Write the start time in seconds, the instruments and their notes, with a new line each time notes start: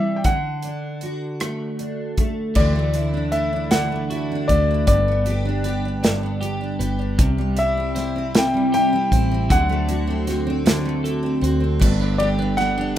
Already playing: steel-string acoustic guitar C3 E3 G3 C4 E4, grand piano E5
0.16 grand piano G5
0.24 steel-string acoustic guitar D3, grand piano F#5, kick, closed hi-hat
0.62 steel-string acoustic guitar D4, closed hi-hat
1.01 steel-string acoustic guitar F#4, closed hi-hat
1.40 steel-string acoustic guitar A3, cross-stick, closed hi-hat
1.79 steel-string acoustic guitar D4, closed hi-hat
2.18 steel-string acoustic guitar A3, kick, closed hi-hat
2.55 fingered electric bass D2, steel-string acoustic guitar D3, clean electric guitar E3, grand piano D5, kick, crash
2.76 steel-string acoustic guitar A3
2.94 clean electric guitar D4, steel-string acoustic guitar E4, closed hi-hat
3.14 steel-string acoustic guitar D4
3.32 clean electric guitar A3, steel-string acoustic guitar E4, grand piano E5, closed hi-hat
3.53 steel-string acoustic guitar D4
3.71 steel-string acoustic guitar D3, clean electric guitar D4, grand piano F#5, snare, closed hi-hat
3.92 steel-string acoustic guitar A3
4.10 steel-string acoustic guitar E4, clean electric guitar F#4, closed hi-hat
4.32 steel-string acoustic guitar D4
4.48 fingered electric bass D2, clean electric guitar A3, steel-string acoustic guitar E4, grand piano D5, kick, closed hi-hat
4.71 steel-string acoustic guitar D4
4.87 fingered electric bass G1, steel-string acoustic guitar G2, clean electric guitar B3, grand piano D5, kick, closed hi-hat
5.08 steel-string acoustic guitar B3
5.26 clean electric guitar D4, steel-string acoustic guitar G4, closed hi-hat
5.45 steel-string acoustic guitar D4
5.64 clean electric guitar B3, steel-string acoustic guitar G4, closed hi-hat
5.85 steel-string acoustic guitar D4
6.03 steel-string acoustic guitar G2, clean electric guitar D4, snare, closed hi-hat
6.23 steel-string acoustic guitar B3
6.41 clean electric guitar G4, steel-string acoustic guitar G4, closed hi-hat
6.61 steel-string acoustic guitar D4
6.79 fingered electric bass G1, clean electric guitar B3, steel-string acoustic guitar G4, closed hi-hat
6.99 steel-string acoustic guitar D4
7.18 fingered electric bass C2, steel-string acoustic guitar C3, clean electric guitar G3, kick, closed hi-hat
7.38 steel-string acoustic guitar G3
7.57 clean electric guitar E4, steel-string acoustic guitar E4, grand piano E5, closed hi-hat
7.77 steel-string acoustic guitar C4
7.95 clean electric guitar C4, steel-string acoustic guitar E4, snare, closed hi-hat
8.16 steel-string acoustic guitar C4
8.35 steel-string acoustic guitar C3, clean electric guitar E4, grand piano G5, snare, closed hi-hat
8.54 steel-string acoustic guitar G3
8.72 steel-string acoustic guitar E4, clean electric guitar G4, grand piano G5, closed hi-hat
8.93 steel-string acoustic guitar C4
9.12 fingered electric bass A1, clean electric guitar C4, steel-string acoustic guitar E4, kick, closed hi-hat
9.31 steel-string acoustic guitar C4
9.49 fingered electric bass D2, steel-string acoustic guitar D3, clean electric guitar F#3, grand piano F#5, kick, closed hi-hat
9.69 steel-string acoustic guitar A3
9.88 clean electric guitar D4, steel-string acoustic guitar F#4, closed hi-hat
10.07 steel-string acoustic guitar C4
10.27 clean electric guitar C4, steel-string acoustic guitar F#4, snare, closed hi-hat
10.47 steel-string acoustic guitar C4
10.65 steel-string acoustic guitar D3, clean electric guitar D4, snare, closed hi-hat
10.85 steel-string acoustic guitar A3
11.04 steel-string acoustic guitar F#4, clean electric guitar A4, closed hi-hat
11.23 steel-string acoustic guitar C4
11.41 fingered electric bass D2, clean electric guitar C4, steel-string acoustic guitar F#4, closed hi-hat
11.60 steel-string acoustic guitar C4
11.79 fingered electric bass G1, steel-string acoustic guitar G2, clean electric guitar B3, kick, crash
11.99 clean electric guitar B3, steel-string acoustic guitar D4
12.18 steel-string acoustic guitar G4, clean electric guitar G4, grand piano D5, ride
12.39 clean electric guitar B3, steel-string acoustic guitar D4
12.57 steel-string acoustic guitar B3, clean electric guitar D4, grand piano F#5, snare, ride
12.78 steel-string acoustic guitar D4, clean electric guitar G4